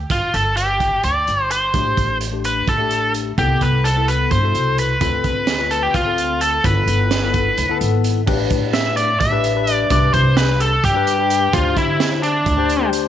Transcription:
0.10 upright bass G1, lead electric guitar F4, kick, closed hi-hat
0.34 upright bass G1, lead electric guitar A4, closed hi-hat
0.57 lead electric guitar G4, closed hi-hat
0.80 kick, closed hi-hat
1.03 upright bass D2, lead electric guitar D5, closed hi-hat
1.27 upright bass G1, closed hi-hat
1.51 lead electric guitar C5, closed hi-hat
1.73 upright bass A1, tine electric piano A3 D4 G4, kick, closed hi-hat
1.97 upright bass A1, kick, closed hi-hat
2.21 closed hi-hat
2.31 tine electric piano A3 D4 G4
2.44 lead electric guitar B4, closed hi-hat
2.67 upright bass A1, lead electric guitar A4, kick, closed hi-hat
2.78 tine electric piano A3 D4 G4
2.91 closed hi-hat
3.14 closed hi-hat
3.38 upright bass C2, tine electric piano B3 E4 A4, lead electric guitar G4, kick, closed hi-hat
3.61 upright bass C2, lead electric guitar B4, kick, closed hi-hat
3.84 lead electric guitar A4, closed hi-hat
3.96 tine electric piano B3 E4 A4
4.08 lead electric guitar B4, closed hi-hat
4.31 upright bass G2, lead electric guitar C5, kick, closed hi-hat
4.42 tine electric piano B2 E4 A4
4.55 upright bass C2, closed hi-hat
4.78 lead electric guitar B4, closed hi-hat
5.00 upright bass D2, tine electric piano C4 F4 A4, kick, closed hi-hat
5.24 upright bass D2, kick, closed hi-hat
5.47 snare, closed hi-hat
5.58 tine electric piano C4 F4 B4
5.71 lead electric guitar A4, closed hi-hat
5.83 lead electric guitar G4
5.94 upright bass D2, lead electric guitar F4, kick, closed hi-hat
6.05 tine electric piano C4 F4 A4
6.18 closed hi-hat
6.41 lead electric guitar A4, closed hi-hat
6.64 upright bass G1, tine electric piano B3 E4 A4, lead electric guitar B4, kick, closed hi-hat
6.87 upright bass G1, closed hi-hat
7.11 snare, closed hi-hat
7.22 tine electric piano B3 E4 A4
7.34 kick, closed hi-hat
7.58 upright bass D2, closed hi-hat
7.69 tine electric piano B3 E4 A4
7.81 upright bass G#1, closed hi-hat
8.04 closed hi-hat
8.26 upright bass A1, tine electric piano D4 G4 B4, kick, crash
8.50 upright bass A2, kick, closed hi-hat
8.73 lead electric guitar E5, snare, closed hi-hat
8.97 lead electric guitar D5, closed hi-hat
9.20 upright bass A1, lead electric guitar E5, kick, closed hi-hat
9.31 tine electric piano D4 G4 B4
9.44 closed hi-hat
9.55 tine electric piano D4 G4 B4
9.67 closed hi-hat
9.74 lead electric guitar D5
9.90 upright bass C2, tine electric piano D4 G4 B4, lead electric guitar D5, kick, closed hi-hat
10.14 upright bass C2, lead electric guitar C5, kick, closed hi-hat
10.37 lead electric guitar B4, snare, closed hi-hat
10.60 lead electric guitar A4, closed hi-hat
10.84 upright bass G2, lead electric guitar G4, kick, closed hi-hat
10.94 tine electric piano D4 G4 B4
11.07 closed hi-hat
11.18 tine electric piano D4 G4 B4
11.30 closed hi-hat
11.53 upright bass D2, tine electric piano D4 G4 C5, lead electric guitar F4, kick, closed hi-hat
11.77 upright bass D3, lead electric guitar E4, kick, closed hi-hat
12.00 snare, closed hi-hat
12.23 lead electric guitar D4, closed hi-hat
12.46 upright bass D2, kick, closed hi-hat
12.57 tine electric piano D4 G4 C5
12.69 closed hi-hat
12.80 tine electric piano D4 G4 C5
12.93 closed hi-hat

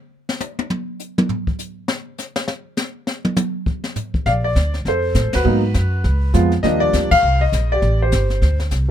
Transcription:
0.29 snare
0.40 hi-hat pedal, high tom
0.59 high tom
0.70 mid tom
1.00 hi-hat pedal
1.18 mid tom
1.29 floor tom
1.47 kick
1.59 hi-hat pedal
1.88 snare
2.18 snare, hi-hat pedal
2.36 snare
2.48 snare
2.77 snare, hi-hat pedal
3.07 snare
3.25 mid tom
3.36 hi-hat pedal, mid tom
3.66 kick
3.84 snare
3.96 floor tom, hi-hat pedal
4.14 kick
4.26 upright bass A#1, grand piano D5 F5, brush sweep, kick, snare
4.44 grand piano D5
4.55 upright bass D2, kick, snare, hi-hat pedal
4.74 snare
4.85 upright bass F2, grand piano A4 C5, brush sweep, kick, snare
5.14 upright bass A2, kick, snare, hi-hat pedal
5.25 upright bass F2
5.33 upright bass D2, grand piano F#4 B4, snare, ride
5.44 upright bass G#2, grand piano F#3 A#3 B3 D#4, brush sweep
5.74 upright bass F#2, kick, snare, hi-hat pedal
6.04 upright bass C#2, brush sweep, kick, snare
6.34 upright bass F2, grand piano F3 G#3 B3 F4, snare, hi-hat pedal
6.52 snare
6.63 upright bass D#2, grand piano F3 G3 A#3 D4 G4 D#5, brush sweep, kick, snare
6.80 grand piano D5
6.93 upright bass D2, kick, snare, hi-hat pedal
7.11 grand piano F5, muted upright bass stroke, kick, crash
7.23 upright bass C2, brush sweep
7.41 grand piano D#5
7.52 upright bass A#1, kick, snare, hi-hat pedal
7.72 grand piano G4 D5
7.82 upright bass A1, brush sweep, kick, snare
8.02 grand piano G4 C5
8.12 upright bass G1, kick, snare, hi-hat pedal
8.30 snare
8.42 upright bass D2, brush sweep, kick, snare
8.60 snare
8.71 upright bass C2, kick, snare, hi-hat pedal

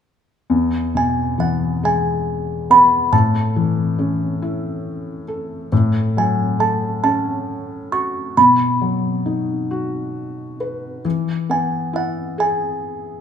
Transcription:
0.50 felt piano E2
0.95 felt piano B2, music box G#5
1.38 felt piano E3, music box F#5
1.83 felt piano G#3, music box G#5
2.70 felt piano B3, music box B5
3.12 felt piano A2, music box A5
3.56 felt piano E3
3.99 felt piano C#4
4.42 felt piano E4
5.28 felt piano A4
5.72 felt piano A2
6.17 felt piano F#3, music box G#5
6.59 felt piano A3, music box A5
7.04 felt piano C#4, music box A5
7.92 felt piano F#4, music box C#6
8.37 felt piano B2, music box B5
8.82 felt piano F#3
9.26 felt piano D#4
9.71 felt piano F#4
10.60 felt piano B4
11.05 felt piano E3
11.50 felt piano B3, music box G#5
11.93 felt piano E4, music box F#5
12.38 felt piano G#4, music box G#5

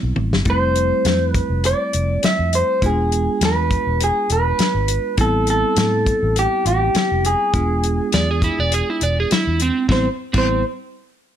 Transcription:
Already playing: tine electric piano G3 B3 C4 E4
0.03 fingered electric bass B1
0.16 fingered electric bass A1, high tom
0.32 fingered electric bass G1, snare
0.45 fingered electric bass F1, tine electric piano G3 A3 C4 E4, kick, closed hi-hat
0.50 clean electric guitar C5
0.75 closed hi-hat
1.05 fingered electric bass F2, snare, closed hi-hat
1.29 clean electric guitar B4
1.34 kick, closed hi-hat
1.50 fingered electric bass F1
1.64 clean electric guitar D5, closed hi-hat
1.93 fingered electric bass F1, closed hi-hat
2.23 clean electric guitar E5, muted fingered electric bass stroke, snare, closed hi-hat
2.39 fingered electric bass F2
2.53 clean electric guitar C5, closed hi-hat
2.82 fingered electric bass E1, tine electric piano G#3 B3 D4 F4, clean electric guitar G#4, kick, closed hi-hat
3.12 closed hi-hat
3.41 fingered electric bass E2, clean electric guitar B4, snare, closed hi-hat
3.71 kick, closed hi-hat
3.87 fingered electric bass E1
4.00 clean electric guitar G#4, closed hi-hat
4.30 fingered electric bass E1, clean electric guitar B4, closed hi-hat
4.59 muted fingered electric bass stroke, snare, closed hi-hat
4.75 fingered electric bass G#1
4.88 closed hi-hat
5.18 fingered electric bass A1, tine electric piano G3 B3 C4 E4, clean electric guitar A4, kick, closed hi-hat
5.47 clean electric guitar A4, closed hi-hat
5.76 fingered electric bass A2, snare, closed hi-hat
6.06 kick, closed hi-hat
6.23 fingered electric bass A1
6.36 clean electric guitar G4, closed hi-hat
6.66 fingered electric bass A1, clean electric guitar G4, closed hi-hat
6.95 muted fingered electric bass stroke, snare, closed hi-hat
7.12 fingered electric bass F1
7.25 clean electric guitar G#4, closed hi-hat
7.53 fingered electric bass E1, tine electric piano G#3 B3 D4 F4, kick, closed hi-hat
7.83 closed hi-hat
8.12 fingered electric bass E2, electric slide guitar D5, snare, closed hi-hat
8.31 electric slide guitar G#4
8.42 electric slide guitar E4, kick, closed hi-hat
8.59 fingered electric bass E1, electric slide guitar D5
8.72 electric slide guitar G#4, closed hi-hat
8.90 electric slide guitar E4
9.01 fingered electric bass E1, electric slide guitar D5, closed hi-hat
9.20 electric slide guitar G#4
9.31 electric slide guitar E4, muted fingered electric bass stroke, snare, closed hi-hat
9.47 fingered electric bass E2
9.60 electric slide guitar C4, closed hi-hat
9.89 fingered electric bass A1, tine electric piano G3 B3 C4 E4, electric slide guitar C4, clean electric guitar C5, kick, snare
10.33 fingered electric bass A1, tine electric piano G3 B3 C4 E4, electric slide guitar C4, kick, crash
10.38 clean electric guitar C5

